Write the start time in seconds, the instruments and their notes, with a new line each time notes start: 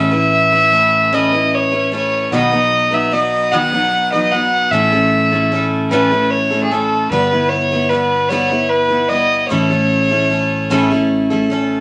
Already playing: fretless electric bass A1, steel-string acoustic guitar A3 C#4 E4 B4, fiddle E5
0.11 steel-string acoustic guitar C#4 E4 B4
0.52 steel-string acoustic guitar C#4 E4 B4
0.72 steel-string acoustic guitar A3 C#4 E4 B4
1.12 steel-string acoustic guitar A3 C#4 E4 B4, fiddle D#5
1.32 steel-string acoustic guitar C#4 E4 B4
1.55 fiddle C#5
1.72 steel-string acoustic guitar C#4 E4 B4
1.92 steel-string acoustic guitar A3 C#4 E4 B4, fiddle C#5
2.32 fretless electric bass B1, steel-string acoustic guitar B2 D#3 F#3 B3 D#4 B4, fiddle D#5
2.52 steel-string acoustic guitar F#3 B3 D#4 B4
2.91 steel-string acoustic guitar F#3 B3 D#4 B4, fiddle E5
3.11 steel-string acoustic guitar F#3 B3 D#4 B4, fiddle D#5
3.52 steel-string acoustic guitar B2 D#3 F#3 B3 D#4 B4, fiddle F#5
3.72 steel-string acoustic guitar F#3 B3 D#4 B4
4.12 steel-string acoustic guitar F#3 B3 D#4 B4, fiddle D#5
4.32 steel-string acoustic guitar F#3 B3 D#4, fiddle F#5
4.36 steel-string acoustic guitar B4
4.71 fretless electric bass A1, steel-string acoustic guitar A2 E3 A3 C#4 E4 A4, fiddle E5
4.92 steel-string acoustic guitar A3 C#4 E4 A4
5.31 steel-string acoustic guitar A3 C#4 E4 A4
5.52 steel-string acoustic guitar A3 C#4 E4 A4
5.90 steel-string acoustic guitar A2 E3 A3 C#4 E4 A4, fiddle B4
6.11 steel-string acoustic guitar A3 C#4 E4 A4
6.31 fiddle C#5
6.51 steel-string acoustic guitar A3 C#4 E4 A4
6.64 fiddle G#4
6.71 steel-string acoustic guitar A3 C#4 E4 A4, fiddle A4
7.11 fretless electric bass G1, steel-string acoustic guitar G3 B3 E4 B4, fiddle B4
7.31 steel-string acoustic guitar B3 E4 B4
7.49 fiddle C#5
7.72 steel-string acoustic guitar B3 E4 B4
7.89 steel-string acoustic guitar G3 B3 E4, fiddle B4
7.94 steel-string acoustic guitar B4
8.29 steel-string acoustic guitar G3 B3 E4 B4, fiddle C#5
8.50 steel-string acoustic guitar B3 E4 B4
8.69 fiddle B4
8.89 steel-string acoustic guitar B3 E4 B4
9.09 steel-string acoustic guitar G3 B3 E4 B4, fiddle D#5
9.49 fretless electric bass A1, steel-string acoustic guitar A2 E3 A3 C#4 E4 A4, fiddle C#5
9.70 steel-string acoustic guitar A3 C#4 E4 A4
10.10 steel-string acoustic guitar A3 C#4 E4 A4
10.30 steel-string acoustic guitar A3 C#4 E4 A4
10.70 steel-string acoustic guitar A2 E3 A3 C#4 E4 A4
10.90 steel-string acoustic guitar A3 C#4 E4 A4
11.30 steel-string acoustic guitar A3 C#4 E4 A4
11.50 steel-string acoustic guitar A3 C#4 E4 A4